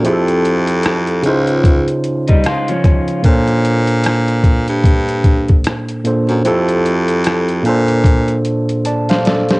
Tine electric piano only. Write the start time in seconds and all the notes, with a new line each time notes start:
0.03 F3 C4 E4 G4 G#4
0.13 A4
1.22 C#3 C#4 D#4
1.27 E4 C5
1.34 F4
3.22 A#2 A#3 D4
3.27 A4 C5
6.04 A#2 A#3 D4 A4 C5
6.44 F3 C4 E4 G4 A4
7.62 A#2 A#3 D4
7.68 A4 C5
8.86 D5 A5
9.10 C5 F5
9.26 A4 D5
9.51 G4 C5